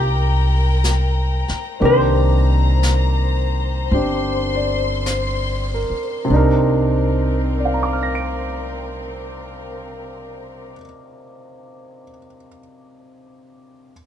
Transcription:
Already playing: upright bass C2, grand piano G#3 A#3 C4 D#4 G5, hollow-body jazz guitar G4, string section A#4 G5 A#5
0.84 snare, hi-hat pedal
1.48 muted upright bass stroke, snare
1.80 upright bass C2, grand piano D#3 A#3 C4 D4 G4, string section C5 A#5, brush sweep
1.85 hollow-body jazz guitar C5
2.83 snare, hi-hat pedal
3.88 upright bass G1, grand piano C4, hollow-body jazz guitar A#4, string section C6, brush sweep
3.94 grand piano D4 G4
4.55 grand piano D5
5.06 grand piano C5, snare, hi-hat pedal
5.74 grand piano A#4
5.90 muted upright bass stroke
6.25 grand piano C3 C4, string section A#4
6.29 upright bass C2, string section C4, grand piano D4
6.33 grand piano D#4 A#4
7.58 grand piano D5
7.65 grand piano F5
7.74 grand piano A#5
7.83 grand piano D6
7.93 grand piano F6
8.03 grand piano A#6
8.15 grand piano D7

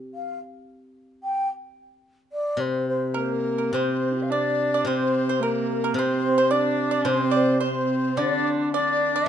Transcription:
0.14 xiao F5
1.23 xiao G5
2.32 xiao D5
2.57 guzheng C3, xiao C5
2.88 xiao C5
3.14 horsehead fiddle A#3, pipa A#4, dizi A#4
3.18 xiao A#4
3.23 dizi C5
3.32 dizi A#4
3.58 pipa A#4
3.72 guzheng C3, horsehead fiddle C4, dizi C5, xiao C5, pipa C5
4.11 xiao D4
4.15 xiao F4 G4
4.21 xiao A#4, dizi F5
4.25 xiao C5 D5
4.30 horsehead fiddle D4, dizi D5, pipa D5
4.74 pipa D5
4.80 dizi D5
4.85 guzheng C3, horsehead fiddle C4, xiao C5, pipa C5, dizi C5
5.29 pipa C5
5.40 horsehead fiddle A#3, xiao A#4, pipa A#4, dizi A#4
5.84 pipa A#4
5.94 guzheng C3, horsehead fiddle C4, xiao C5, dizi C5
5.99 pipa C5
6.37 dizi C5, pipa C5
6.51 horsehead fiddle D4, pipa D5, xiao D5, dizi D5
6.91 pipa D5
7.05 guzheng C3, horsehead fiddle C4, pipa C5, dizi C5, xiao C5
7.31 pipa D5
7.36 xiao D5
7.60 horsehead fiddle C4, pipa C5, dizi C5, xiao C5
8.17 guzheng D3, horsehead fiddle D4, pipa D5, dizi D5, xiao D5
8.51 pipa C5
8.74 horsehead fiddle D4, pipa D5, dizi D5, xiao D5
9.16 pipa D5

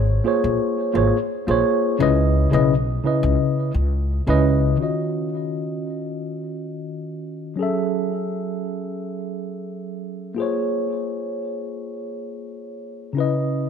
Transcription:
Already playing: upright bass G#1
0.24 tine electric piano A#3 F4 G#4 C5 C#5
0.44 upright bass A#1
0.93 upright bass G#1, tine electric piano A#3 F4 G#4 C5 C#5
1.47 upright bass A#1, tine electric piano A#3 F4 G#4 C5 C#5
1.99 upright bass C#2, tine electric piano C#3 C#4 E4 B4 D#5
2.51 upright bass B1, tine electric piano C#3 C#4 E4 B4 D#5
3.04 tine electric piano C#3 C#4 E4 B4 D#5
3.23 upright bass C#2
3.74 upright bass C#2
4.26 upright bass C#2, tine electric piano C#3 C#4 E4 B4 D#5
4.76 tine electric piano D#3 C#4 F4
4.82 tine electric piano F#4 D#5
7.56 tine electric piano F#3 C#4 G#4
7.61 tine electric piano A4 E5
10.35 tine electric piano A#3 F4 G#4
10.40 tine electric piano C5 C#5
13.13 tine electric piano C#3 C#4 E4
13.18 tine electric piano B4 D#5

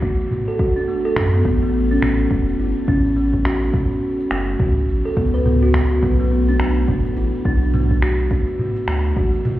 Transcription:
0.02 sub bass A1, kalimba F#4, kick
0.20 cabasa
0.31 mid tom, cabasa
0.48 kalimba A4, cabasa
0.59 kalimba F#4, kick
0.76 kalimba D4, cabasa
0.88 kalimba A3, cabasa
1.05 kalimba A4, cabasa
1.16 sub bass F#2, finger snap, kick, mid tom
1.34 kalimba B3, cabasa
1.45 sub bass A1, kalimba B3, kick, cabasa
1.63 kalimba A3, cabasa
1.74 kalimba B3
1.91 kalimba C#4, cabasa
2.02 sub bass A1, kalimba A3, finger snap, mid tom, cabasa
2.20 cabasa
2.31 sub bass E1, kick
2.49 cabasa
2.59 sub bass G1, kalimba E4, cabasa
2.77 cabasa
2.88 sub bass A1, kalimba C#4, kick, mid tom
3.06 cabasa
3.17 kalimba A3, cabasa
3.34 kick, cabasa
3.45 kalimba F#4, finger snap
3.63 cabasa
3.74 kick, mid tom, cabasa
3.91 cabasa
4.20 cabasa
4.31 sub bass F#1, kalimba A3, finger snap, cabasa
4.49 cabasa
4.59 sub bass C#2, kalimba F#4, kick, mid tom
4.78 cabasa
4.88 sub bass A1, cabasa
5.05 kalimba A4, cabasa
5.17 sub bass C#2, kalimba B3, kick
5.34 sub bass C#2, kalimba B4, cabasa
5.45 kalimba B3, mid tom, cabasa
5.63 kalimba F#4, cabasa
5.74 finger snap, kick
5.91 kalimba F#4, cabasa
6.02 sub bass B1, kalimba B3, kick, mid tom, open hi-hat, cabasa
6.20 kalimba A3, open hi-hat, cabasa
6.31 kalimba B3
6.48 kalimba D4, open hi-hat, cabasa
6.59 sub bass B1, kalimba A3, finger snap, open hi-hat, cabasa
6.77 cabasa
6.88 sub bass F#1, kick, mid tom
7.05 open hi-hat, cabasa
7.17 sub bass A1, kalimba E4, open hi-hat, cabasa
7.35 cabasa
7.45 sub bass B1, kalimba D4, kick
7.62 open hi-hat, cabasa
7.74 kalimba A3, mid tom, open hi-hat, cabasa
7.91 kick, cabasa
8.02 kalimba F#4, finger snap
8.19 open hi-hat, cabasa
8.31 kick, open hi-hat, cabasa
8.48 open hi-hat, cabasa
8.59 mid tom
8.76 open hi-hat, cabasa
8.88 sub bass D2, kalimba A3, finger snap, open hi-hat, cabasa
9.05 cabasa
9.16 sub bass A1, kalimba F#4, kick
9.33 open hi-hat, cabasa
9.45 mid tom, open hi-hat, cabasa

